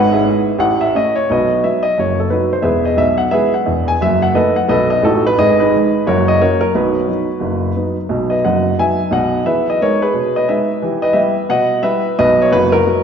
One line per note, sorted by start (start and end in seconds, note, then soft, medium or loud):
0.00 0.21 G#1 medium
0.00 0.21 G#2 medium
0.00 0.12 B4 medium
0.00 0.13 F#5 loud
0.12 0.57 G#4 medium
0.12 0.57 B4 soft
0.12 0.60 E5 medium
0.25 0.44 B3 soft
0.25 0.44 E4 soft
0.59 0.88 A1 medium
0.59 0.88 A2 medium
0.59 0.81 F#5 medium
0.81 0.94 E5 medium
0.95 1.13 A3 soft
0.95 1.13 C#4 soft
0.95 1.13 E4 soft
0.95 1.16 D#5 medium
1.15 1.28 C#5 medium
1.30 1.58 B1 medium
1.30 1.59 B2 medium
1.30 1.62 F#4 medium
1.30 1.62 B4 medium
1.30 1.64 D#5 medium
1.64 1.82 F#3 soft
1.64 1.82 B3 soft
1.64 1.84 E5 medium
1.83 1.96 D#5 medium
1.98 2.27 F#1 soft
1.98 2.26 F#2 soft
1.98 2.19 C#5 medium
2.20 2.32 A4 medium
2.30 2.49 F#3 soft
2.30 2.49 B3 soft
2.30 2.50 D#4 soft
2.30 2.51 F#4 soft
2.30 2.51 B4 medium
2.53 2.65 C5 medium
2.62 2.91 E1 medium
2.62 2.91 E2 medium
2.62 2.83 G#4 medium
2.62 2.84 B4 medium
2.62 2.84 E5 medium
2.85 2.99 D#5 medium
2.97 3.25 B1 medium
2.97 3.19 E5 medium
3.18 3.32 F#5 medium
3.31 3.51 E3 soft
3.31 3.51 G#3 soft
3.31 3.50 B3 soft
3.31 3.52 G#4 medium
3.31 3.52 B4 medium
3.31 3.53 E5 medium
3.54 3.88 F#5 medium
3.66 3.94 E1 medium
3.66 3.94 E2 medium
3.88 4.01 G#5 medium
4.01 4.30 F#1 medium
4.01 4.30 F#2 medium
4.01 4.22 E5 medium
4.22 4.36 F#5 medium
4.34 4.53 D#3 soft
4.34 4.54 A3 soft
4.34 4.53 B3 soft
4.34 4.55 A4 medium
4.34 4.55 B4 medium
4.34 4.56 D#5 medium
4.56 4.69 F#5 medium
4.69 4.98 B1 medium
4.69 4.98 B2 medium
4.69 4.90 A4 medium
4.69 4.90 B4 medium
4.69 4.89 D#5 medium
4.90 5.04 D#5 medium
5.03 5.30 A1 medium
5.03 5.30 A2 medium
5.03 5.24 D#4 medium
5.03 5.24 F#4 medium
5.03 5.25 A4 medium
5.27 5.38 B4 medium
5.38 5.67 G#1 medium
5.38 5.67 G#2 medium
5.38 5.58 G#4 medium
5.38 5.58 B4 medium
5.38 5.59 D#5 loud
5.60 6.04 D#4 medium
5.60 6.04 G#4 medium
5.60 6.07 B4 medium
5.74 5.92 D#3 soft
5.74 5.93 G#3 soft
6.07 6.36 F#1 medium
6.07 6.35 F#2 medium
6.07 6.27 F#4 medium
6.07 6.27 A#4 medium
6.07 6.27 C#5 medium
6.28 6.41 D#5 medium
6.40 6.59 F#3 soft
6.40 6.59 A#3 soft
6.40 6.60 C#4 soft
6.40 6.60 F#4 medium
6.40 6.59 A#4 medium
6.40 6.61 C#5 medium
6.61 6.74 A#4 medium
6.75 7.03 B1 medium
6.75 7.03 B2 medium
6.75 7.07 D#4 medium
6.75 7.94 F#4 medium
6.75 7.98 B4 medium
7.07 7.26 F#3 soft
7.07 7.26 B3 soft
7.07 7.27 D#4 soft
7.40 7.71 F#1 medium
7.40 7.70 F#2 medium
7.76 7.95 F#3 soft
7.76 7.95 B3 soft
7.76 7.96 D#4 soft
8.09 8.37 B1 medium
8.09 8.37 B2 medium
8.30 8.43 B4 medium
8.30 8.44 D#5 medium
8.44 8.71 F#1 medium
8.44 8.72 F#2 medium
8.44 8.77 D#5 medium
8.44 8.79 F#5 medium
8.79 8.97 F#3 soft
8.79 8.98 B3 soft
8.79 8.97 D#4 soft
8.79 9.11 E5 medium
8.79 9.13 G#5 medium
9.11 9.39 B1 medium
9.11 9.39 B2 medium
9.11 9.44 D#5 medium
9.11 9.47 F#5 medium
9.45 9.74 E3 medium
9.45 9.66 G#4 soft
9.45 9.68 B4 medium
9.45 9.69 E5 medium
9.70 9.81 D#5 medium
9.82 10.00 G#3 soft
9.82 10.00 B3 soft
9.82 10.01 D#4 soft
9.82 10.01 A#4 medium
9.82 10.02 C#5 medium
10.02 10.34 G#4 medium
10.02 10.36 B4 medium
10.14 10.43 B2 medium
10.36 10.49 B4 medium
10.36 10.49 D#5 medium
10.48 10.67 G#3 soft
10.48 10.68 B3 soft
10.48 10.67 D#4 soft
10.48 10.81 B4 medium
10.48 10.83 E5 medium
10.82 11.11 E3 medium
10.82 11.02 G4 soft
11.02 11.14 B4 medium
11.02 11.16 D#5 medium
11.13 11.33 G3 soft
11.13 11.33 B3 soft
11.13 11.34 E4 soft
11.13 11.48 B4 medium
11.13 11.49 E5 medium
11.49 11.79 B2 medium
11.49 11.82 D#5 medium
11.49 11.84 F#5 medium
11.82 12.02 G3 soft
11.82 12.02 B3 soft
11.82 12.03 E4 medium
11.82 12.16 B4 medium
11.82 12.18 E5 medium
12.19 12.46 B1 medium
12.19 12.46 B2 medium
12.19 12.40 B4 medium
12.19 12.42 D#5 medium
12.42 12.53 C#5 medium
12.52 12.80 F#1 medium
12.52 12.80 F#2 medium
12.52 12.72 F#4 medium
12.52 12.73 B4 loud
12.72 12.85 F#4 medium
12.72 13.03 A#4 loud
12.86 13.03 F#3 medium
12.86 13.03 B3 medium
12.86 13.03 F#4 soft